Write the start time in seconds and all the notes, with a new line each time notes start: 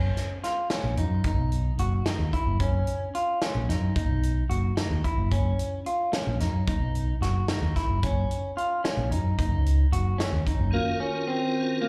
Already playing: F#1 C#4
0.17 snare, closed hi-hat
0.44 F4, snare, closed hi-hat
0.70 C#4, snare, closed hi-hat
0.84 A#1
0.97 F#2 D#4, closed hi-hat
1.24 F#1 D#4, kick, closed hi-hat
1.38 B1
1.52 closed hi-hat
1.78 F#1 F#4, closed hi-hat
2.06 D#4, snare, closed hi-hat
2.19 D#2
2.33 E4, kick, closed hi-hat
2.47 F#1
2.60 F#1 C#4, kick, closed hi-hat
2.87 closed hi-hat
3.15 F4, closed hi-hat
3.42 C#4, snare, closed hi-hat
3.55 A#1
3.68 F#2 D#4, snare, closed hi-hat
3.96 F#1 D#4, kick, closed hi-hat
4.09 B1
4.23 closed hi-hat
4.49 F#1 F#4, closed hi-hat
4.77 D#4, snare, closed hi-hat
4.90 D#2
5.04 E4, kick, closed hi-hat
5.18 F#1
5.32 F#1 C#4, kick, closed hi-hat
5.59 closed hi-hat
5.86 F4, closed hi-hat
6.13 C#4, snare, closed hi-hat
6.27 A#1
6.40 F#2 D#4, snare, closed hi-hat
6.67 F#1 D#4, kick, closed hi-hat
6.80 B1
6.95 closed hi-hat
7.21 F#1 F#4, snare, closed hi-hat
7.48 D#4, snare, closed hi-hat
7.62 D#2
7.76 E4, kick, snare, closed hi-hat
7.90 F#1
8.03 F#1 C#4, kick, closed hi-hat
8.31 closed hi-hat
8.57 F4, closed hi-hat
8.84 C#4, snare, closed hi-hat
8.97 A#1
9.11 F#2 D#4, closed hi-hat
9.39 F#1 D#4, kick, closed hi-hat
9.52 C#2
9.66 closed hi-hat
9.92 F#1 F#4, closed hi-hat
10.18 C#4, snare, closed hi-hat
10.33 D#2
10.46 D#4, kick, closed hi-hat
10.59 F#1
10.71 D#3 A#3 C#4 F4 F#4 A#4
11.00 C#4
11.28 C4
11.81 A#3